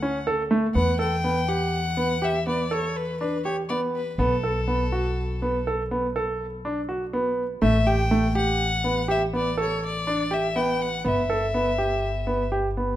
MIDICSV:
0, 0, Header, 1, 4, 480
1, 0, Start_track
1, 0, Tempo, 490597
1, 745, Time_signature, 7, 2, 24, 8
1, 12684, End_track
2, 0, Start_track
2, 0, Title_t, "Violin"
2, 0, Program_c, 0, 40
2, 0, Note_on_c, 0, 78, 106
2, 237, Note_off_c, 0, 78, 0
2, 734, Note_on_c, 0, 78, 80
2, 962, Note_off_c, 0, 78, 0
2, 974, Note_on_c, 0, 79, 84
2, 1461, Note_on_c, 0, 78, 92
2, 1476, Note_off_c, 0, 79, 0
2, 2192, Note_on_c, 0, 76, 79
2, 2207, Note_off_c, 0, 78, 0
2, 2416, Note_off_c, 0, 76, 0
2, 2422, Note_on_c, 0, 74, 71
2, 2666, Note_on_c, 0, 73, 76
2, 2681, Note_off_c, 0, 74, 0
2, 2900, Note_on_c, 0, 71, 75
2, 2915, Note_off_c, 0, 73, 0
2, 3124, Note_off_c, 0, 71, 0
2, 3130, Note_on_c, 0, 71, 71
2, 3359, Note_off_c, 0, 71, 0
2, 3373, Note_on_c, 0, 73, 71
2, 3483, Note_off_c, 0, 73, 0
2, 3610, Note_on_c, 0, 74, 69
2, 3720, Note_off_c, 0, 74, 0
2, 3873, Note_on_c, 0, 71, 75
2, 4017, Note_off_c, 0, 71, 0
2, 4017, Note_on_c, 0, 71, 47
2, 4107, Note_on_c, 0, 69, 69
2, 4122, Note_off_c, 0, 71, 0
2, 5544, Note_off_c, 0, 69, 0
2, 7464, Note_on_c, 0, 76, 85
2, 7700, Note_on_c, 0, 79, 89
2, 7714, Note_off_c, 0, 76, 0
2, 8180, Note_off_c, 0, 79, 0
2, 8188, Note_on_c, 0, 78, 95
2, 8864, Note_off_c, 0, 78, 0
2, 8911, Note_on_c, 0, 76, 79
2, 9016, Note_off_c, 0, 76, 0
2, 9157, Note_on_c, 0, 74, 73
2, 9372, Note_off_c, 0, 74, 0
2, 9400, Note_on_c, 0, 73, 74
2, 9613, Note_off_c, 0, 73, 0
2, 9641, Note_on_c, 0, 74, 89
2, 10115, Note_on_c, 0, 76, 78
2, 10130, Note_off_c, 0, 74, 0
2, 10335, Note_on_c, 0, 79, 84
2, 10350, Note_off_c, 0, 76, 0
2, 10583, Note_on_c, 0, 78, 85
2, 10598, Note_off_c, 0, 79, 0
2, 10821, Note_off_c, 0, 78, 0
2, 10839, Note_on_c, 0, 76, 77
2, 12232, Note_off_c, 0, 76, 0
2, 12684, End_track
3, 0, Start_track
3, 0, Title_t, "Grand piano"
3, 0, Program_c, 1, 0
3, 24, Note_on_c, 1, 61, 66
3, 165, Note_off_c, 1, 61, 0
3, 263, Note_on_c, 1, 69, 76
3, 405, Note_off_c, 1, 69, 0
3, 496, Note_on_c, 1, 57, 72
3, 639, Note_off_c, 1, 57, 0
3, 736, Note_on_c, 1, 59, 71
3, 879, Note_off_c, 1, 59, 0
3, 969, Note_on_c, 1, 69, 60
3, 1114, Note_off_c, 1, 69, 0
3, 1214, Note_on_c, 1, 59, 62
3, 1358, Note_off_c, 1, 59, 0
3, 1452, Note_on_c, 1, 67, 57
3, 1737, Note_off_c, 1, 67, 0
3, 1928, Note_on_c, 1, 59, 64
3, 2073, Note_off_c, 1, 59, 0
3, 2171, Note_on_c, 1, 67, 66
3, 2315, Note_off_c, 1, 67, 0
3, 2414, Note_on_c, 1, 59, 64
3, 2557, Note_off_c, 1, 59, 0
3, 2652, Note_on_c, 1, 69, 65
3, 2937, Note_off_c, 1, 69, 0
3, 3139, Note_on_c, 1, 62, 59
3, 3281, Note_off_c, 1, 62, 0
3, 3378, Note_on_c, 1, 67, 58
3, 3520, Note_off_c, 1, 67, 0
3, 3619, Note_on_c, 1, 59, 66
3, 3902, Note_off_c, 1, 59, 0
3, 4098, Note_on_c, 1, 59, 79
3, 4240, Note_off_c, 1, 59, 0
3, 4339, Note_on_c, 1, 69, 64
3, 4481, Note_off_c, 1, 69, 0
3, 4575, Note_on_c, 1, 59, 66
3, 4718, Note_off_c, 1, 59, 0
3, 4817, Note_on_c, 1, 66, 63
3, 5100, Note_off_c, 1, 66, 0
3, 5305, Note_on_c, 1, 59, 65
3, 5445, Note_off_c, 1, 59, 0
3, 5549, Note_on_c, 1, 69, 70
3, 5687, Note_off_c, 1, 69, 0
3, 5785, Note_on_c, 1, 59, 67
3, 5925, Note_off_c, 1, 59, 0
3, 6024, Note_on_c, 1, 69, 71
3, 6305, Note_off_c, 1, 69, 0
3, 6506, Note_on_c, 1, 62, 65
3, 6645, Note_off_c, 1, 62, 0
3, 6737, Note_on_c, 1, 66, 61
3, 6879, Note_off_c, 1, 66, 0
3, 6980, Note_on_c, 1, 59, 73
3, 7262, Note_off_c, 1, 59, 0
3, 7453, Note_on_c, 1, 57, 77
3, 7596, Note_off_c, 1, 57, 0
3, 7698, Note_on_c, 1, 67, 67
3, 7840, Note_off_c, 1, 67, 0
3, 7936, Note_on_c, 1, 57, 69
3, 8078, Note_off_c, 1, 57, 0
3, 8172, Note_on_c, 1, 67, 68
3, 8456, Note_off_c, 1, 67, 0
3, 8651, Note_on_c, 1, 59, 63
3, 8794, Note_off_c, 1, 59, 0
3, 8887, Note_on_c, 1, 67, 71
3, 9032, Note_off_c, 1, 67, 0
3, 9132, Note_on_c, 1, 59, 64
3, 9275, Note_off_c, 1, 59, 0
3, 9368, Note_on_c, 1, 69, 73
3, 9654, Note_off_c, 1, 69, 0
3, 9853, Note_on_c, 1, 62, 66
3, 9996, Note_off_c, 1, 62, 0
3, 10086, Note_on_c, 1, 67, 64
3, 10231, Note_off_c, 1, 67, 0
3, 10330, Note_on_c, 1, 59, 69
3, 10615, Note_off_c, 1, 59, 0
3, 10806, Note_on_c, 1, 59, 77
3, 10952, Note_off_c, 1, 59, 0
3, 11052, Note_on_c, 1, 69, 67
3, 11196, Note_off_c, 1, 69, 0
3, 11294, Note_on_c, 1, 59, 69
3, 11437, Note_off_c, 1, 59, 0
3, 11529, Note_on_c, 1, 67, 63
3, 11815, Note_off_c, 1, 67, 0
3, 12003, Note_on_c, 1, 59, 66
3, 12150, Note_off_c, 1, 59, 0
3, 12248, Note_on_c, 1, 67, 65
3, 12393, Note_off_c, 1, 67, 0
3, 12496, Note_on_c, 1, 59, 61
3, 12639, Note_off_c, 1, 59, 0
3, 12684, End_track
4, 0, Start_track
4, 0, Title_t, "Upright bass"
4, 0, Program_c, 2, 32
4, 0, Note_on_c, 2, 38, 77
4, 712, Note_off_c, 2, 38, 0
4, 739, Note_on_c, 2, 40, 60
4, 4059, Note_off_c, 2, 40, 0
4, 4093, Note_on_c, 2, 35, 67
4, 7417, Note_off_c, 2, 35, 0
4, 7462, Note_on_c, 2, 33, 67
4, 10782, Note_off_c, 2, 33, 0
4, 10818, Note_on_c, 2, 31, 67
4, 12684, Note_off_c, 2, 31, 0
4, 12684, End_track
0, 0, End_of_file